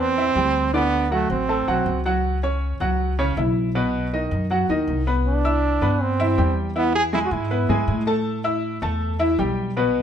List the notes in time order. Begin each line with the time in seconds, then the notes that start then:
Already playing: E2 B3 B4 B5
0.00 C4
0.18 E3 E4 E5
0.35 D2 G3 G4 G5
0.74 D3 B3 D4 D5
1.11 F#3 A3 F#4 F#5
1.30 A1 C4
1.49 A3 A4 A5
1.67 B1 F#3 F#4 F#5
1.86 C#2
2.06 F#3 F#4 F#5
2.43 C#4 C#5 C#6
2.80 C#2 F#3 F#4 F#5
3.19 C#3 C#4 C#5
3.37 B1 E3 E4 E5
3.75 B2 B3 B4
4.13 D#3 D#4 D#5
4.31 F#2
4.50 F#3 F#4 F#5
4.69 D#2 D#3 D#4 D#5
4.87 C2
5.07 B3 B4 B5
5.26 D4
5.45 E4 E5 E6
5.81 G2 B3 B4 B5
6.02 C4
6.19 E3 E4 E5
6.38 E2 G3 G4 G5
6.76 E3 B3 E4 E5
6.95 G#4
7.13 G#3 E4 G#4 G#5
7.25 F#4
7.31 G#2 E4
7.51 B3 B4 B5
7.69 G#2 G#3 G#4 G#5
7.88 A2
8.07 A3 A4 A5
8.44 E4 E5 E6
8.82 E2 A3 A4 A5
9.19 E3 E4 E5
9.38 B1 G3 G4 G5
9.77 B2 B3 B4